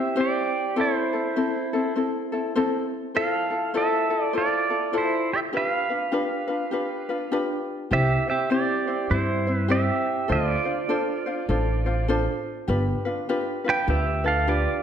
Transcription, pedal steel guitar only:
0.00 0.14 G4 medium
0.00 0.20 E5 medium
0.20 0.74 G4 medium
0.20 0.80 D5 medium
0.80 1.93 E4 medium
0.80 1.94 C5 medium
3.17 3.72 A4 medium
3.17 3.77 F5 loud
3.77 4.32 A4 medium
3.77 4.23 E5 loud
4.23 4.37 D5 loud
4.38 4.91 F4 medium
4.38 4.97 D5 medium
4.98 5.30 E4 medium
4.98 5.33 C5 medium
5.33 5.39 G4 medium
5.33 5.39 E5 loud
5.57 7.30 B4 medium
5.57 7.30 F5 medium
7.93 8.27 G4 medium
7.93 8.29 E5 loud
8.30 8.51 G4 medium
8.30 8.52 E5 medium
8.52 9.08 G4 medium
8.52 9.13 D5 medium
9.11 9.68 E4 medium
9.11 9.55 C5 medium
9.55 9.72 B4 medium
9.72 10.28 G4 medium
9.72 10.32 E5 medium
10.32 12.08 F4 medium
10.32 12.06 D5 medium
13.69 13.88 B4 medium
13.69 13.90 G5 loud
13.90 14.23 G4 medium
13.90 14.27 E5 loud
14.26 14.47 A4 medium
14.26 14.50 F5 medium
14.49 14.83 F4 medium
14.49 14.83 D5 medium

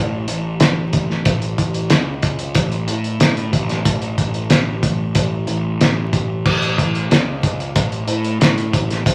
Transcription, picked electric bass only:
0.00 0.27 A1 medium
0.28 0.60 A1 medium
0.61 1.23 A1 medium
1.26 1.57 A1 medium
1.58 1.90 A1 medium
1.91 2.53 C#2 medium
2.55 2.87 A1 medium
2.88 3.19 A2 medium
3.20 3.52 A2 medium
3.53 3.84 A1 medium
3.85 4.17 A1 medium
4.17 4.49 A1 medium
4.52 4.83 A1 medium
4.83 5.14 A1 medium
5.15 5.47 A1 medium
5.48 5.79 A1 medium
5.81 6.43 A1 medium
6.46 6.77 A1 medium
6.79 7.10 A1 medium
7.11 7.73 C#2 medium
7.76 8.07 A1 medium
8.08 8.39 A2 medium
8.40 8.71 A2 medium
8.73 9.04 A1 medium
9.06 9.15 A1 medium

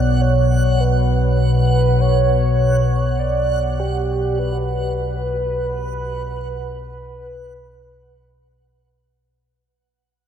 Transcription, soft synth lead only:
0.00 0.22 D5 loud
0.21 0.82 C#5 loud
0.80 1.70 B4 loud
1.70 2.02 B4 loud
2.01 3.21 C#5 loud
3.19 3.81 D5 loud
3.79 4.40 G4 medium
4.39 6.78 B4 loud
6.79 8.57 B4 loud

